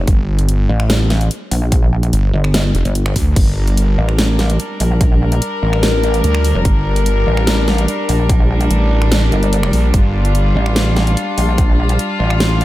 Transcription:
0.07 G1, kick, closed hi-hat
0.39 closed hi-hat
0.49 closed hi-hat
0.69 A1
0.80 finger snap
0.90 snare, closed hi-hat
1.10 snare, closed hi-hat
1.21 closed hi-hat
1.31 closed hi-hat
1.51 A#1, open hi-hat
1.72 kick, closed hi-hat
2.03 closed hi-hat
2.13 G1, closed hi-hat
2.34 G1
2.44 finger snap
2.54 snare, closed hi-hat
2.75 F1, closed hi-hat
2.85 G1, closed hi-hat
2.95 closed hi-hat
3.06 finger snap
3.16 D2, kick, open hi-hat
3.36 G1 G3 D4 A#4, kick, closed hi-hat, crash
3.67 closed hi-hat
3.77 closed hi-hat
3.98 A1
4.09 finger snap
4.19 snare, closed hi-hat
4.39 snare, closed hi-hat
4.50 closed hi-hat
4.60 closed hi-hat
4.80 A#1, open hi-hat
5.01 kick, closed hi-hat
5.32 closed hi-hat
5.42 closed hi-hat
5.62 A1
5.73 finger snap
5.83 snare, closed hi-hat
6.03 closed hi-hat
6.14 closed hi-hat
6.24 D2, closed hi-hat
6.35 finger snap
6.45 open hi-hat
6.55 F1
6.65 G1, kick, closed hi-hat
6.96 closed hi-hat
7.06 closed hi-hat
7.27 A1
7.37 finger snap
7.47 snare, closed hi-hat
7.68 snare, closed hi-hat
7.78 closed hi-hat
7.88 closed hi-hat
8.09 A#1, open hi-hat
8.29 kick, closed hi-hat
8.61 closed hi-hat
8.71 A1, closed hi-hat
9.02 finger snap
9.12 snare, closed hi-hat
9.32 G1, closed hi-hat
9.43 closed hi-hat
9.53 closed hi-hat
9.63 finger snap
9.73 A#1, open hi-hat
9.94 G1 F4, kick, closed hi-hat
10.25 closed hi-hat
10.35 closed hi-hat
10.55 A1
10.66 finger snap
10.76 snare, closed hi-hat
10.97 snare, closed hi-hat
11.07 closed hi-hat
11.17 closed hi-hat
11.38 A#1, open hi-hat
11.58 kick, closed hi-hat
11.89 closed hi-hat
11.99 closed hi-hat
12.20 A1
12.30 finger snap
12.40 snare, closed hi-hat
12.61 closed hi-hat

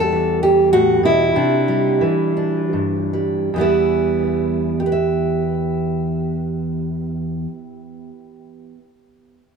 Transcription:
Already playing: E2 G3
0.00 A4
0.12 E3
0.43 G4
0.73 A2 F#4
1.03 B2 E4
1.35 C3 D4
1.68 G3
2.01 E3
2.37 D4
2.73 G2
3.13 G3
3.54 E2 E3
3.58 G3 B3 E4
4.80 G4
4.86 B4
4.92 E5

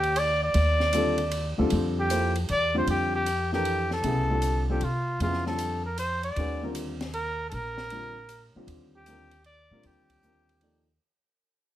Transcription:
Already playing: D#2 G4
0.03 ride
0.16 D5, ride
0.44 D5
0.54 D#2, ride
0.80 snare
0.93 D3 G3 C4 F4 A4, hi-hat pedal, ride
1.18 ride
1.31 ride
1.58 D#2 D3 G3 C4 F4 A4
1.70 F2, ride
2.00 G4
2.10 F3 A#3 E4 A4 C5, hi-hat pedal, ride
2.36 ride
2.49 E2 D5, ride
2.74 D3 G3 C4 F4 G4 C5
2.87 F2 G4, ride
3.15 G4
3.26 hi-hat pedal, ride
3.53 E3 D4 G4 A4 A#4, snare
3.65 ride
3.91 A4, snare
4.03 C2 C#3 F#3 B3 E4 G#4, ride
4.30 D3 G3 C4 F4 A4
4.42 hi-hat pedal, ride
4.69 D3 G3 C4 F4 G4 A4
4.81 C3 F4, ride
5.20 F2 C#3 F#3 B3 E4 F4 G#4, ride
5.33 snare
5.46 D3 G3 C4 F4 A4, snare
5.59 hi-hat pedal, ride
5.86 A#4
5.98 C5, hi-hat pedal, ride
6.23 D5, ride
6.36 D#2 D#3 G#3 C#4 F#4 B4, ride
6.63 D3 G3 C4 F4 A#4
6.75 hi-hat pedal, ride
7.01 snare, ride
7.14 A#4, ride
7.50 A#1 A4, ride
7.54 A#4
7.78 snare
7.90 D3 G3 C4 F4 A#4, ride
8.29 hi-hat pedal, ride
8.55 D3 G3 C4 F4 G4, muted upright bass stroke
8.67 D#2, ride
8.96 G4
9.06 D3 G3 C4 F4 A#4, hi-hat pedal, ride
9.31 ride
9.44 D5, ride
9.71 A#2 D3 G3 C4 F4 A#4
9.83 D#2 G4, ride
10.10 kick, ride
10.22 D3 G3 C4 F4 A#4, hi-hat pedal
10.49 ride
10.61 F3 A#3 D#4 A4 D5, ride

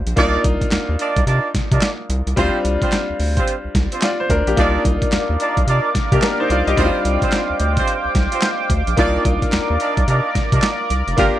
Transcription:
Already playing: G3 C4 D4 F4
0.06 A#1, closed hi-hat
0.16 C2 A#3 D4 D#4 F4 A#4 D5, kick, closed hi-hat
0.44 C2, kick, closed hi-hat
0.61 kick, closed hi-hat
0.71 D#2, snare, clap, closed hi-hat
0.89 D#2
0.99 D4 D#4 F4 A#4 D5, closed hi-hat
1.16 C2, kick, closed hi-hat
1.27 C3 D4 D#4 F4 A#4 D5, closed hi-hat
1.55 C3, kick, snare, closed hi-hat
1.71 C3 D4 D#4 F4 A#4 D5, kick, closed hi-hat
1.81 snare, clap, closed hi-hat
2.10 C2, closed hi-hat
2.27 C2, closed hi-hat
2.36 D2 G3 C4 D4 F4 G4 C5, kick, closed hi-hat
2.65 C2, closed hi-hat
2.82 C4 F4 G4 C5, kick, closed hi-hat
2.92 snare, clap, closed hi-hat
3.10 D2
3.20 D2, open hi-hat
3.37 C4 F4 G4 C5, kick, closed hi-hat
3.48 closed hi-hat
3.64 C2
3.75 C2, kick, snare, closed hi-hat
3.92 C4 F4 G4 C5, closed hi-hat
4.02 F4 D5, snare, clap, closed hi-hat
4.20 C5
4.30 D2 D4 A#4, kick, closed hi-hat
4.47 A#1 A#3 G4, closed hi-hat
4.56 C2 A#3 D4 D#4 F4 A#4 D5 F5 D6, kick, closed hi-hat
4.85 C2, kick, closed hi-hat
5.02 kick, closed hi-hat
5.12 D#2, snare, clap, closed hi-hat
5.29 D#2
5.40 D4 D#4 F4 A#4 D5, closed hi-hat
5.57 C2, kick, closed hi-hat
5.67 C3 D4 D#4 F4 A#4 D5, closed hi-hat
5.95 C3, kick, snare, closed hi-hat
6.12 C3 A#3 D4 D#4 F4 G4 A#4 D5, kick, closed hi-hat
6.22 D4 A#4, snare, clap, closed hi-hat
6.40 D#4 C5
6.50 C2 F4 D5, closed hi-hat
6.67 C2 G4 D#5, closed hi-hat
6.76 D2 G3 C4 D4 D#4 F4 G4 C5 G5, kick, closed hi-hat
6.85 F4
7.05 C2, closed hi-hat
7.22 C4 F4 G4 C5, kick, closed hi-hat
7.32 snare, clap, closed hi-hat
7.50 D2
7.60 D2, closed hi-hat
7.77 C4 F4 G4 C5, kick, closed hi-hat
7.88 closed hi-hat
8.05 C2
8.15 C2, kick, snare, closed hi-hat
8.32 C4 F4 G4 C5, closed hi-hat
8.42 snare, clap, closed hi-hat
8.70 D2, kick, closed hi-hat
8.87 A#1, closed hi-hat
8.97 C2 A#3 D4 D#4 F4 A#4 D5, kick, closed hi-hat
9.25 C2, kick, closed hi-hat
9.42 kick, closed hi-hat
9.52 D#2, snare, clap, closed hi-hat
9.70 D#2
9.80 D4 D#4 F4 A#4 D5, closed hi-hat
9.97 C2, kick, closed hi-hat
10.07 C3 D4 D#4 F4 A#4 D5, closed hi-hat
10.35 C3, kick, snare, closed hi-hat
10.52 C3 D4 D#4 F4 A#4 D5, kick, closed hi-hat
10.62 snare, clap, closed hi-hat
10.90 C2, closed hi-hat
11.07 F1, closed hi-hat
11.17 G1 A#3 D4 F4 G4 A#4 F5 G5, kick, closed hi-hat

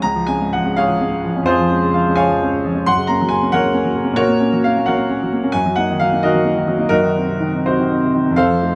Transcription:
0.02 C#2 A#5
0.15 F3
0.27 G#3 C#4 G#5
0.41 G#2
0.53 F3 F#5
0.64 G#3 C#4
0.76 G#2 G#4 C#5 F5
0.88 F3
1.01 G#3 C#4
1.11 G#2
1.24 F3
1.35 G#3 C#4
1.43 F2 G#4 C5
1.47 F4
1.60 F3
1.71 G#3 C#4
1.83 C#3
1.94 F3 F5
2.07 G#3 C#4
2.16 C#3 C#5 F5 G#5
2.29 F3
2.42 G#3 C#4
2.54 C#3
2.65 F3
2.75 G#3 C#4
2.86 F#2 F#5 C6
2.97 C#3
3.07 A#3 C#4 A#5
3.21 F#3
3.29 C#3 G#5
3.42 A#3 C#4
3.52 F#3 A#4 C#5 F#5
3.64 C#3
3.74 A#3 C#4
3.84 F#3
3.95 C#3
4.04 A#3 C#4
4.13 A#2 F#4 A#4 C#5
4.28 A#3
4.40 A#3 C#4
4.53 F#3
4.64 A#3 F5
4.77 A#3 C#4
4.86 F#3 A#4 C#5 F#5
4.97 A#3
5.09 A#3 C#4
5.23 F#3
5.33 A#3
5.43 A#3 C#4
5.52 F#2 G#5
5.66 F#3
5.76 A#3 D#4 F#5
5.91 D#3
6.00 F#3 F5
6.12 A#3 D#4
6.23 D#3 F#4 A#4 D#5
6.34 F#3
6.45 A#3 D#4
6.55 D#3
6.68 F#3
6.78 A#3 D#4
6.89 F#2 D#4 F#4 A#4
7.03 D#3
7.16 C4 D#4
7.28 C3
7.40 D#3
7.55 C4 D#4
7.66 C3 D#4 F#4 C5
7.79 D#3
7.90 C4 D#4
8.03 C3
8.15 D#3
8.26 C4 D#4
8.31 F2
8.36 A4 C5 F5
8.50 F3
8.62 A3 D#4

